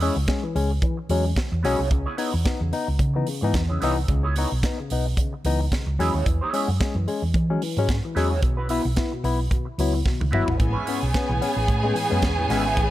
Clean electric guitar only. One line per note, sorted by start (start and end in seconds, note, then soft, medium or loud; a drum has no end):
0.01 0.16 B3 medium
0.01 0.16 E4 medium
0.01 0.17 G#4 medium
0.01 0.16 C#5 medium
0.17 muted clean electric guitar stroke soft
0.29 muted clean electric guitar stroke soft
0.43 muted clean electric guitar stroke soft
0.71 muted clean electric guitar stroke medium
0.82 muted clean electric guitar stroke soft
0.97 muted clean electric guitar stroke soft
1.24 muted clean electric guitar stroke soft
1.36 muted clean electric guitar stroke soft
1.52 muted clean electric guitar stroke soft
1.63 1.79 B3 medium
1.63 1.79 E4 medium
1.63 1.78 G#4 medium
1.63 1.77 C#5 medium
1.79 1.89 B3 soft
1.79 1.90 E4 medium
1.79 1.90 G#4 medium
1.79 1.90 C#5 medium
1.91 muted clean electric guitar stroke soft
2.06 2.16 B3 medium
2.06 2.16 E4 medium
2.06 2.17 G#4 medium
2.06 2.17 C#5 medium
2.17 2.33 B3 medium
2.17 2.32 E4 medium
2.17 2.32 G#4 medium
2.17 2.31 C#5 medium
2.32 muted clean electric guitar stroke soft
2.44 muted clean electric guitar stroke soft
2.59 muted clean electric guitar stroke soft
2.87 muted clean electric guitar stroke soft
2.99 muted clean electric guitar stroke soft
3.14 muted clean electric guitar stroke soft
3.41 muted clean electric guitar stroke soft
3.53 muted clean electric guitar stroke soft
3.69 3.79 B3 soft
3.69 3.80 E4 soft
3.69 3.81 G#4 soft
3.69 3.81 C#5 soft
3.80 3.99 B3 medium
3.80 3.96 E4 medium
3.80 3.96 G#4 medium
3.80 3.95 C#5 loud
3.96 muted clean electric guitar stroke medium
4.08 muted clean electric guitar stroke soft
4.23 4.34 B3 medium
4.23 4.35 E4 medium
4.23 4.36 G#4 medium
4.23 4.36 C#5 medium
4.35 4.51 B3 medium
4.35 4.51 E4 medium
4.35 4.50 G#4 medium
4.35 4.50 C#5 medium
4.51 muted clean electric guitar stroke soft
4.63 muted clean electric guitar stroke soft
4.78 muted clean electric guitar stroke medium
5.06 muted clean electric guitar stroke soft
5.16 muted clean electric guitar stroke soft
5.33 muted clean electric guitar stroke soft
5.59 muted clean electric guitar stroke soft
5.72 muted clean electric guitar stroke soft
5.87 muted clean electric guitar stroke soft
5.99 6.15 B3 medium
5.99 6.14 E4 medium
5.99 6.14 G#4 medium
5.99 6.14 C#5 loud
6.15 6.26 B3 soft
6.15 6.26 E4 medium
6.15 6.26 G#4 medium
6.15 6.26 C#5 medium
6.27 muted clean electric guitar stroke soft
6.41 6.53 B3 medium
6.41 6.54 E4 medium
6.41 6.54 G#4 medium
6.41 6.55 C#5 medium
6.55 6.69 B3 medium
6.55 6.69 E4 medium
6.55 6.69 G#4 medium
6.55 6.69 C#5 medium
6.70 muted clean electric guitar stroke soft
6.81 muted clean electric guitar stroke soft
6.96 muted clean electric guitar stroke soft
7.22 muted clean electric guitar stroke soft
7.35 muted clean electric guitar stroke soft
7.50 muted clean electric guitar stroke soft
7.77 muted clean electric guitar stroke soft
7.88 muted clean electric guitar stroke soft
8.04 muted clean electric guitar stroke soft
8.15 8.31 B3 medium
8.15 8.30 E4 medium
8.15 8.30 G#4 medium
8.15 8.29 C#5 medium
8.30 8.41 B3 medium
8.30 8.42 E4 medium
8.30 8.43 G#4 medium
8.30 8.42 C#5 medium
8.42 muted clean electric guitar stroke soft
8.57 8.68 B3 medium
8.57 8.68 E4 medium
8.57 8.69 F#4 medium
8.57 8.70 B4 medium
8.69 8.85 B3 medium
8.69 8.85 E4 medium
8.69 8.84 F#4 medium
8.69 8.83 B4 medium
8.84 muted clean electric guitar stroke soft
8.96 muted clean electric guitar stroke soft
9.12 muted clean electric guitar stroke soft
9.39 muted clean electric guitar stroke soft
9.50 muted clean electric guitar stroke soft
9.65 muted clean electric guitar stroke soft
9.93 muted clean electric guitar stroke medium
10.05 muted clean electric guitar stroke soft
10.21 muted clean electric guitar stroke soft
10.31 10.47 B3 medium
10.31 10.46 E4 loud
10.31 10.45 F#4 medium
10.31 10.45 B4 medium
10.46 10.58 B3 medium
10.46 10.58 E4 medium
10.46 10.58 F#4 medium
10.46 10.58 B4 medium
10.58 muted clean electric guitar stroke soft
10.73 10.84 G#3 medium
10.73 10.84 C#4 medium
10.73 10.85 E4 medium
10.73 10.86 B4 medium
10.85 11.01 G#3 medium
10.85 11.01 C#4 medium
10.85 11.00 E4 medium
10.85 10.99 B4 medium
11.01 muted clean electric guitar stroke soft
11.13 muted clean electric guitar stroke soft
11.29 muted clean electric guitar stroke soft
11.56 muted clean electric guitar stroke soft
11.68 muted clean electric guitar stroke soft
11.83 muted clean electric guitar stroke soft
12.11 muted clean electric guitar stroke soft
12.23 muted clean electric guitar stroke soft
12.38 muted clean electric guitar stroke soft
12.50 12.67 G#3 medium
12.50 12.67 C#4 medium
12.50 12.66 E4 loud
12.50 12.66 B4 medium
12.67 12.76 G#3 soft
12.67 12.77 C#4 medium
12.67 12.77 E4 medium
12.67 12.78 B4 medium